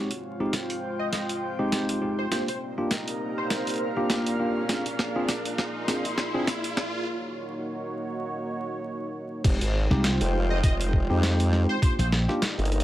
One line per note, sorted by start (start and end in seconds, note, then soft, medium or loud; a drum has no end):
0.00 2.29 G#3 medium
0.00 4.65 C4 medium
0.00 2.29 F4 medium
0.00 3.28 F4 medium
0.00 2.29 C5 medium
0.00 riser medium
0.11 closed hi-hat medium
0.15 3.27 G5 medium
0.34 3.28 C5 medium
0.40 0.52 G#3 medium
0.40 0.52 C4 medium
0.40 0.52 D#4 medium
0.40 0.52 G4 loud
0.53 snare medium
0.53 closed hi-hat medium
0.70 closed hi-hat medium
0.99 1.08 D#5 medium
1.13 1.24 D#5 medium
1.13 snare medium
1.13 closed hi-hat medium
1.29 closed hi-hat medium
1.59 1.99 G#3 loud
1.59 1.99 C4 medium
1.59 1.99 D#4 medium
1.59 1.99 G4 loud
1.72 snare medium
1.72 closed hi-hat medium
1.89 closed hi-hat medium
2.02 2.25 G#3 medium
2.02 2.25 C4 medium
2.02 2.25 D#4 medium
2.02 2.25 G4 medium
2.19 2.29 C5 medium
2.31 7.03 A#3 medium
2.31 2.47 A#3 medium
2.31 2.47 D4 medium
2.31 4.69 D#4 medium
2.31 2.47 F4 medium
2.31 4.67 G4 medium
2.31 2.47 G4 medium
2.31 2.43 C5 medium
2.31 7.03 D5 medium
2.31 snare medium
2.31 closed hi-hat medium
2.48 2.57 C5 medium
2.48 closed hi-hat medium
2.60 7.07 A#4 medium
2.78 2.90 A#3 medium
2.78 2.90 D4 medium
2.78 2.90 F4 medium
2.78 2.90 G4 loud
2.91 7.07 F5 medium
2.91 snare medium
2.91 closed hi-hat medium
3.08 closed hi-hat medium
3.38 4.20 C5 loud
3.50 snare medium
3.50 closed hi-hat medium
3.67 closed hi-hat medium
3.69 closed hi-hat soft
3.74 closed hi-hat soft
3.76 closed hi-hat soft
3.78 closed hi-hat soft
3.97 4.36 A#3 loud
3.97 4.36 D4 medium
3.97 4.36 F4 medium
3.97 4.36 G4 loud
4.10 snare medium
4.10 closed hi-hat medium
4.27 closed hi-hat medium
4.39 4.62 A#3 medium
4.39 4.62 D4 medium
4.39 4.62 F4 medium
4.39 4.62 G4 medium
4.69 4.85 C4 medium
4.69 4.85 D4 medium
4.69 4.85 F4 medium
4.69 7.04 F4 medium
4.69 4.85 G#4 medium
4.69 7.04 G#4 medium
4.69 snare medium
4.69 closed hi-hat medium
4.86 closed hi-hat medium
4.99 snare medium
5.16 5.28 C4 medium
5.16 5.28 D4 medium
5.16 5.28 F4 medium
5.16 5.28 G#4 loud
5.28 snare medium
5.28 closed hi-hat medium
5.45 closed hi-hat medium
5.52 7.07 C6 medium
5.58 snare medium
5.88 6.03 C4 medium
5.88 6.03 D4 medium
5.88 6.03 F4 medium
5.88 6.03 G#4 medium
5.88 snare medium
5.88 closed hi-hat medium
6.05 closed hi-hat medium
6.18 snare medium
6.34 6.46 C4 loud
6.34 6.46 D4 medium
6.34 6.46 F4 medium
6.34 6.46 G#4 loud
6.47 snare medium
6.47 closed hi-hat medium
6.64 closed hi-hat medium
6.77 snare medium
7.07 9.42 A#3 medium
7.07 9.42 D#4 medium
7.07 9.42 F#4 medium
7.07 9.42 C#5 medium
9.44 9.59 F1 loud
9.44 9.60 G#3 medium
9.44 11.80 G#3 medium
9.44 9.60 C4 medium
9.44 9.60 D#4 medium
9.44 11.80 D#4 medium
9.44 12.65 F4 medium
9.44 11.80 F4 medium
9.44 9.60 G4 medium
9.44 11.80 C5 medium
9.44 kick loud
9.44 closed hi-hat medium
9.44 crash loud
9.60 9.88 G#1 loud
9.60 12.78 G5 medium
9.60 closed hi-hat medium
9.77 12.78 C5 medium
9.91 10.18 C2 medium
9.91 10.03 G#3 loud
9.91 10.03 C4 medium
9.91 10.03 D#4 medium
9.91 10.03 G4 loud
9.91 snare soft
10.04 snare loud
10.04 closed hi-hat medium
10.21 10.61 F1 loud
10.21 closed hi-hat medium
10.50 10.59 D#5 medium
10.63 11.07 F1 loud
10.63 10.74 D#5 medium
10.63 kick loud
10.63 closed hi-hat medium
10.81 closed hi-hat medium
10.93 kick medium
11.10 11.67 F2 medium
11.10 11.49 G#3 loud
11.10 11.49 C4 medium
11.10 11.49 D#4 medium
11.10 11.49 G4 loud
11.23 snare loud
11.23 closed hi-hat medium
11.40 closed hi-hat medium
11.52 11.75 G#3 medium
11.52 11.75 C4 medium
11.52 11.75 D#4 medium
11.52 11.75 G4 medium
11.52 snare soft
11.69 11.80 C5 loud
11.82 11.97 A#3 medium
11.82 12.84 A#3 medium
11.82 11.98 D4 medium
11.82 12.84 D#4 medium
11.82 11.98 F4 medium
11.82 11.98 G4 medium
11.82 12.84 G4 medium
11.82 11.93 C5 medium
11.82 12.84 D5 medium
11.82 kick loud
11.82 closed hi-hat medium
11.99 12.26 A#1 loud
11.99 12.07 C5 medium
11.99 closed hi-hat medium
12.07 12.84 A#4 medium
12.12 snare medium
12.29 12.41 A#3 loud
12.29 12.41 D4 medium
12.29 12.41 F4 medium
12.29 12.41 G4 loud
12.29 snare soft
12.42 12.84 F5 medium
12.42 snare loud
12.42 closed hi-hat medium
12.58 12.84 G1 loud
12.58 closed hi-hat soft
12.65 closed hi-hat soft
12.72 closed hi-hat soft
12.80 closed hi-hat soft